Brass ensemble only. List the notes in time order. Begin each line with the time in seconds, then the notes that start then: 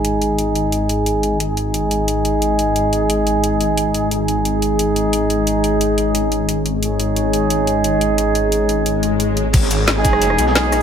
Already playing: G#3 D#4 G#4
1.40 G#3 D#4 G#4
4.11 G#3 D#4 G#4
6.83 G#3 D#4 G#4
9.96 G#3 D#4 G#4
10.47 G#3 D#4 G#4